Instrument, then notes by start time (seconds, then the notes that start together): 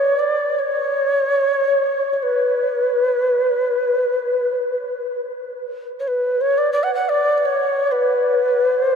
native american-style wooden flute
Already playing: C#5
0.19 D5
0.59 C#5
2.13 C#5
2.23 B4
6.00 C#5
6.08 B4
6.41 C#5
6.58 D5
6.73 D5
6.83 F#5
6.95 F#5
7.09 D5
7.37 D5
7.45 C#5
7.92 B4
8.78 C5